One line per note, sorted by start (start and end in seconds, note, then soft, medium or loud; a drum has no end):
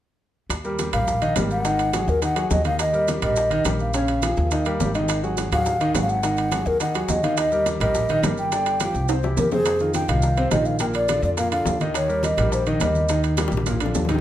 0.50 0.90 D#2 medium
0.50 high bongo medium
0.50 high conga soft
0.50 high timbale medium
0.50 maracas medium
0.64 0.88 G3 medium
0.64 0.88 G4 medium
0.64 0.88 A#4 medium
0.64 high conga soft
0.64 maracas soft
0.79 high bongo medium
0.79 high conga medium
0.79 high timbale medium
0.79 low timbale medium
0.79 maracas medium
0.93 1.33 A#1 medium
0.93 1.16 G3 medium
0.93 1.17 G4 medium
0.93 1.17 A#4 medium
0.93 1.33 F5 medium
0.93 high conga soft
0.93 low conga medium
0.93 high timbale medium
0.93 maracas soft
1.08 high bongo medium
1.08 high conga soft
1.08 low conga medium
1.08 maracas medium
1.22 1.34 D#3 medium
1.22 1.34 D#4 medium
1.22 1.34 D#5 medium
1.22 high conga soft
1.22 high timbale medium
1.22 maracas soft
1.36 2.02 G#1 medium
1.36 1.60 G3 medium
1.36 1.60 G4 medium
1.36 1.60 A#4 medium
1.36 high bongo medium
1.36 low bongo medium
1.36 high conga medium
1.36 high timbale medium
1.36 low timbale medium
1.36 maracas medium
1.51 2.11 F#5 loud
1.51 maracas soft
1.64 1.88 D#3 medium
1.64 1.88 D#4 medium
1.64 1.89 D#5 medium
1.64 high bongo medium
1.64 high conga soft
1.64 high timbale medium
1.64 maracas medium
1.79 high bongo soft
1.79 high conga soft
1.79 high timbale medium
1.79 maracas soft
1.93 2.17 F#3 medium
1.93 2.17 F#4 medium
1.93 2.17 G#4 medium
1.93 high bongo medium
1.93 high conga loud
1.93 high timbale medium
1.93 low timbale medium
1.93 maracas medium
2.08 2.48 D#2 medium
2.08 2.23 A#4 loud
2.08 high bongo soft
2.08 high conga soft
2.08 maracas soft
2.21 2.34 D#3 medium
2.21 2.34 D#4 medium
2.21 2.34 D#5 medium
2.21 2.50 F#5 medium
2.21 high bongo medium
2.21 high conga soft
2.21 high timbale medium
2.21 maracas medium
2.36 2.60 F#3 medium
2.36 2.60 F#4 medium
2.36 2.60 G#4 medium
2.36 high conga soft
2.36 high timbale medium
2.36 maracas soft
2.50 3.17 D#2 medium
2.50 2.65 D#5 medium
2.50 high bongo medium
2.50 low bongo medium
2.50 high conga medium
2.50 low timbale medium
2.50 maracas medium
2.64 2.88 D#3 medium
2.64 2.89 D#4 medium
2.64 2.89 D#5 medium
2.64 2.79 F5 medium
2.64 high bongo soft
2.64 high conga medium
2.64 high timbale medium
2.64 maracas soft
2.79 3.07 D#5 medium
2.79 high bongo medium
2.79 high conga soft
2.79 high timbale medium
2.79 maracas medium
2.93 3.17 G3 medium
2.93 3.17 G4 medium
2.93 3.17 A#4 medium
2.93 high conga soft
2.93 maracas soft
3.08 high bongo medium
3.08 high conga loud
3.08 high timbale medium
3.08 low timbale medium
3.08 maracas medium
3.22 3.62 A#1 medium
3.22 3.46 G3 medium
3.22 3.46 G4 medium
3.22 3.46 A#4 medium
3.22 3.63 D#5 medium
3.22 high conga soft
3.22 low conga medium
3.22 high timbale medium
3.22 maracas soft
3.36 high bongo medium
3.36 high conga soft
3.36 maracas medium
3.50 3.63 D#3 medium
3.50 3.63 D#4 medium
3.50 3.63 D#5 medium
3.50 high conga soft
3.50 high timbale medium
3.50 maracas soft
3.65 4.32 A#1 medium
3.65 3.89 G3 medium
3.65 3.89 G4 medium
3.65 3.89 A#4 medium
3.65 high bongo medium
3.65 low bongo medium
3.65 high conga medium
3.65 high timbale medium
3.65 low timbale medium
3.65 maracas medium
3.79 4.91 F5 medium
3.79 maracas soft
3.94 4.18 C#3 medium
3.94 4.18 C#4 medium
3.94 4.18 C#5 medium
3.94 high bongo medium
3.94 high conga soft
3.94 high timbale medium
3.94 maracas medium
4.08 high bongo soft
4.08 high conga soft
4.08 high timbale medium
4.08 maracas soft
4.22 4.46 F3 medium
4.22 4.47 F4 medium
4.22 4.46 G#4 medium
4.22 high bongo medium
4.22 high conga loud
4.22 high timbale medium
4.22 low timbale medium
4.22 maracas medium
4.37 4.77 D#2 medium
4.37 high bongo soft
4.37 high conga soft
4.37 maracas soft
4.51 4.63 D#3 medium
4.51 4.63 D#4 medium
4.51 4.64 D#5 medium
4.51 high bongo medium
4.51 high conga soft
4.51 high timbale medium
4.51 maracas medium
4.65 4.90 G3 medium
4.65 4.90 G4 medium
4.65 4.90 A#4 medium
4.65 high conga soft
4.65 high timbale medium
4.65 maracas soft
4.80 5.46 G#1 medium
4.80 high bongo medium
4.80 low bongo medium
4.80 high conga medium
4.80 low timbale medium
4.80 maracas medium
4.94 5.18 D#3 medium
4.94 5.18 D#4 medium
4.94 5.19 D#5 medium
4.94 high bongo soft
4.94 high conga medium
4.94 high timbale medium
4.94 maracas soft
5.08 high bongo medium
5.08 high conga soft
5.08 high timbale medium
5.08 maracas medium
5.23 5.47 F#3 medium
5.23 5.47 F#4 medium
5.23 5.47 G#4 medium
5.23 high conga soft
5.23 maracas soft
5.37 high bongo medium
5.37 high conga loud
5.37 high timbale medium
5.37 low timbale medium
5.37 maracas medium
5.52 5.92 D#2 medium
5.52 5.76 F#3 medium
5.52 5.76 F#4 medium
5.52 5.76 G#4 medium
5.52 5.92 F5 loud
5.52 high conga soft
5.52 low conga medium
5.52 high timbale medium
5.52 maracas soft
5.66 high bongo medium
5.66 high conga soft
5.66 low conga medium
5.66 maracas medium
5.80 5.92 D#3 medium
5.80 5.92 D#4 medium
5.80 5.93 D#5 medium
5.80 high conga soft
5.80 high timbale medium
5.80 maracas soft
5.95 6.61 G#1 medium
5.95 6.18 F#3 medium
5.95 6.18 F#4 medium
5.95 6.19 G#4 medium
5.95 high bongo medium
5.95 low bongo medium
5.95 high conga medium
5.95 high timbale medium
5.95 low timbale medium
5.95 maracas medium
6.02 6.11 F5 medium
6.09 6.68 F#5 loud
6.09 maracas soft
6.23 6.47 D#3 medium
6.23 6.47 D#4 medium
6.23 6.47 D#5 medium
6.23 high bongo medium
6.23 high conga soft
6.23 high timbale medium
6.23 maracas medium
6.37 high bongo soft
6.37 high timbale medium
6.37 maracas soft
6.51 6.76 F#3 medium
6.51 6.76 F#4 medium
6.51 6.76 G#4 medium
6.51 high bongo medium
6.51 high conga medium
6.51 high timbale medium
6.51 low timbale medium
6.51 maracas medium
6.66 7.06 D#2 medium
6.66 6.81 A#4 loud
6.66 high bongo soft
6.66 high conga soft
6.66 maracas soft
6.80 6.93 D#3 medium
6.80 6.93 D#4 medium
6.80 6.93 D#5 medium
6.80 7.11 F#5 medium
6.80 high bongo medium
6.80 high conga soft
6.80 high timbale medium
6.80 maracas medium
6.94 7.18 F#3 medium
6.94 7.19 F#4 medium
6.94 7.19 G#4 medium
6.94 high conga soft
6.94 high timbale medium
6.94 maracas soft
7.09 7.75 D#2 medium
7.09 7.25 D#5 medium
7.09 high bongo medium
7.09 low bongo medium
7.09 high conga medium
7.09 low timbale medium
7.09 maracas medium
7.23 7.47 D#3 medium
7.23 7.47 D#4 medium
7.23 7.47 D#5 medium
7.23 7.40 F5 medium
7.23 high bongo soft
7.23 high conga medium
7.23 high timbale medium
7.23 maracas soft
7.37 7.67 D#5 loud
7.37 high bongo medium
7.37 high conga soft
7.37 high timbale loud
7.37 maracas medium
7.52 7.75 G3 medium
7.52 7.75 G4 medium
7.52 7.76 A#4 medium
7.52 high conga soft
7.52 maracas soft
7.66 high bongo medium
7.66 high conga loud
7.66 high timbale medium
7.66 low timbale medium
7.66 maracas medium
7.80 8.20 A#1 medium
7.80 8.04 G3 medium
7.80 8.04 G4 medium
7.80 8.04 A#4 medium
7.80 8.21 D#5 loud
7.80 high conga soft
7.80 low conga medium
7.80 high timbale medium
7.80 maracas soft
7.95 high bongo medium
7.95 high conga soft
7.95 low conga medium
7.95 maracas medium
8.09 8.21 D#3 medium
8.09 8.21 D#4 medium
8.09 8.22 D#5 medium
8.09 high conga soft
8.09 high timbale medium
8.09 maracas soft
8.23 8.89 G1 medium
8.23 8.47 G3 medium
8.23 8.47 G4 medium
8.23 8.47 A#4 medium
8.23 high bongo medium
8.23 low bongo medium
8.23 high conga medium
8.23 high timbale medium
8.23 low timbale medium
8.23 maracas medium
8.37 9.08 G5 loud
8.37 high conga medium
8.37 maracas soft
8.52 8.75 D3 medium
8.52 8.76 D4 medium
8.52 8.76 D5 medium
8.52 high bongo medium
8.52 high conga soft
8.52 high timbale medium
8.52 maracas medium
8.66 high bongo soft
8.66 high conga soft
8.66 high timbale medium
8.66 maracas soft
8.80 9.04 F3 medium
8.80 9.04 F4 medium
8.80 9.05 G4 medium
8.80 high bongo medium
8.80 high conga medium
8.80 high timbale medium
8.80 low timbale medium
8.80 maracas medium
8.94 9.34 C2 medium
8.94 high bongo soft
8.94 high conga soft
8.94 maracas soft
9.08 9.22 C3 medium
9.08 9.22 C4 medium
9.08 9.22 C5 medium
9.08 high bongo medium
9.08 high timbale medium
9.08 maracas medium
9.23 9.47 E3 medium
9.23 9.47 E4 medium
9.23 9.48 G4 medium
9.23 high bongo medium
9.23 maracas soft
9.37 10.03 F2 medium
9.37 9.51 A#4 medium
9.37 low bongo medium
9.37 high conga medium
9.37 low timbale medium
9.37 maracas medium
9.51 9.75 C3 medium
9.51 9.76 C4 medium
9.51 9.92 G#4 loud
9.51 9.76 C5 medium
9.51 low bongo medium
9.51 high conga medium
9.51 low timbale medium
9.51 maracas soft
9.65 high bongo medium
9.65 high conga soft
9.65 high timbale medium
9.65 maracas medium
9.79 10.04 D#3 medium
9.79 10.04 D#4 medium
9.79 10.04 F4 medium
9.79 high conga soft
9.79 maracas soft
9.94 10.10 G5 loud
9.94 high bongo medium
9.94 high conga loud
9.94 high timbale medium
9.94 low timbale medium
9.94 maracas medium
10.08 10.49 C2 medium
10.08 10.32 D#3 medium
10.08 10.32 D#4 medium
10.08 10.33 F4 medium
10.08 10.51 F5 medium
10.08 high conga soft
10.08 low conga medium
10.08 high timbale medium
10.08 maracas soft
10.22 high bongo medium
10.22 high conga soft
10.22 maracas medium
10.37 10.49 C3 loud
10.37 10.49 C4 medium
10.37 10.49 C5 medium
10.37 high conga soft
10.37 high timbale medium
10.37 maracas soft
10.51 11.18 A#1 medium
10.51 10.75 D#3 medium
10.51 10.75 D#4 medium
10.51 10.76 F4 medium
10.51 10.67 D#5 medium
10.51 high bongo medium
10.51 low bongo medium
10.51 high conga medium
10.51 high timbale medium
10.51 low timbale medium
10.51 maracas medium
10.65 10.80 F5 medium
10.65 maracas soft
10.79 11.04 A#2 medium
10.79 11.04 A#3 medium
10.79 11.04 A#4 medium
10.79 10.86 G5 medium
10.79 high bongo medium
10.79 high timbale medium
10.79 maracas medium
10.94 11.21 D5 medium
10.94 high bongo soft
10.94 high conga soft
10.94 high timbale medium
10.94 maracas soft
11.08 11.32 D3 medium
11.08 11.33 D4 medium
11.08 11.33 F4 medium
11.08 high bongo medium
11.08 high conga medium
11.08 high timbale loud
11.08 low timbale medium
11.08 maracas medium
11.22 11.63 F2 medium
11.22 11.30 D5 medium
11.22 high bongo soft
11.22 high conga soft
11.22 maracas soft
11.37 11.49 A#2 medium
11.37 11.49 A#3 medium
11.37 11.50 A#4 medium
11.37 11.51 F5 medium
11.37 high bongo medium
11.37 high conga soft
11.37 high timbale medium
11.37 maracas medium
11.52 11.75 D3 medium
11.52 11.75 D4 medium
11.52 11.76 F4 medium
11.52 11.78 F5 medium
11.52 high conga soft
11.52 high timbale medium
11.52 maracas soft
11.65 12.32 D#2 medium
11.65 high bongo medium
11.65 low bongo medium
11.65 high conga medium
11.65 low timbale medium
11.65 maracas medium
11.80 12.04 D#3 medium
11.80 12.04 D#4 medium
11.80 12.05 D#5 medium
11.80 high bongo soft
11.80 high conga medium
11.80 high timbale medium
11.80 maracas soft
11.94 12.25 C#5 medium
11.94 high bongo medium
11.94 high conga soft
11.94 high timbale medium
11.94 maracas medium
12.08 12.32 G3 medium
12.08 12.32 G4 medium
12.08 12.33 A#4 medium
12.08 high conga soft
12.08 maracas soft
12.23 12.52 D#5 medium
12.23 high bongo medium
12.23 high conga medium
12.23 high timbale medium
12.23 low timbale medium
12.23 maracas medium
12.37 12.77 A#1 medium
12.37 12.61 G3 medium
12.37 12.61 G4 medium
12.37 12.61 A#4 medium
12.37 high conga soft
12.37 low conga medium
12.37 high timbale medium
12.37 maracas soft
12.52 12.66 C5 medium
12.52 high bongo medium
12.52 maracas medium
12.66 12.78 D#3 medium
12.66 12.78 D#4 medium
12.66 12.79 D#5 medium
12.66 high timbale medium
12.66 maracas soft
12.80 13.46 D#2 medium
12.80 13.04 G3 medium
12.80 13.05 G4 medium
12.80 13.05 A#4 medium
12.80 13.21 D#5 medium
12.80 high bongo medium
12.80 low bongo medium
12.80 high conga medium
12.80 high timbale medium
12.80 low timbale medium
12.80 maracas medium
12.95 high conga medium
12.95 maracas soft
13.09 13.33 D#3 medium
13.09 13.33 D#4 medium
13.09 13.33 D#5 medium
13.09 high bongo medium
13.09 high conga soft
13.09 high timbale medium
13.09 maracas medium
13.23 high bongo soft
13.23 high conga soft
13.23 high timbale medium
13.23 maracas soft
13.37 13.61 G3 medium
13.37 13.61 G4 medium
13.37 13.62 A#4 medium
13.37 high bongo loud
13.37 high conga loud
13.37 high timbale medium
13.37 low timbale medium
13.37 maracas medium
13.48 13.92 A#1 medium
13.48 high bongo medium
13.48 high conga medium
13.48 maracas soft
13.57 high bongo medium
13.57 high conga medium
13.66 13.78 A#2 medium
13.66 13.78 A#3 medium
13.66 13.78 A#4 medium
13.66 high bongo medium
13.66 high timbale medium
13.66 maracas medium
13.71 low conga medium
13.80 14.04 D3 medium
13.80 14.04 D4 medium
13.80 14.05 F4 medium
13.80 high timbale medium
13.80 maracas soft
13.86 low bongo medium
13.94 14.21 D#2 medium
13.94 low bongo loud
13.94 low timbale medium
13.94 maracas medium
14.05 14.21 D#4 medium
14.05 low bongo medium
14.05 low conga medium
14.05 high timbale medium
14.09 14.21 D#3 medium
14.09 14.21 D#5 medium
14.09 maracas soft
14.15 low bongo medium